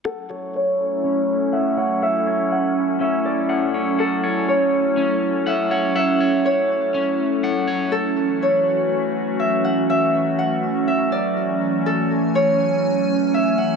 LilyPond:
<<
  \new Staff \with { instrumentName = "Harp" } { \time 4/4 \key a \major \tempo 4 = 122 a'4 cis''2 e''8 fis''8 | e''4 fis''4 e''8 d''8 r4 | a'4 cis''2 e''8 fis''8 | e''4 cis''2 r4 |
a'4 cis''2 e''8 fis''8 | e''4 fis''4 e''8 d''8 r4 | a'4 cis''2 e''8 fis''8 | }
  \new Staff \with { instrumentName = "Clean electric guitar" } { \time 4/4 \key a \major fis''8 cis''4. cis'4 fis''8 cis''8 | fis''8 cis''4. cis'4 fis''8 cis''8 | fis''8 cis''4. cis'4 fis''8 cis''8 | fis''8 cis''4. cis'4 fis''8 cis''8 |
r1 | r1 | r1 | }
  \new Staff \with { instrumentName = "Ambient pad" } { \time 4/4 \key a \major << { a'1~ | a'1~ | a'1~ | a'1 |
fis'1~ | fis'1 | gis''1 | } \\ { <fis a cis' e'>1~ | <fis a cis' e'>1~ | <fis a cis' e'>1~ | <fis a cis' e'>1 |
<e fis a cis'>1~ | <e fis a cis'>1~ | <e fis a cis'>1 | } >> }
>>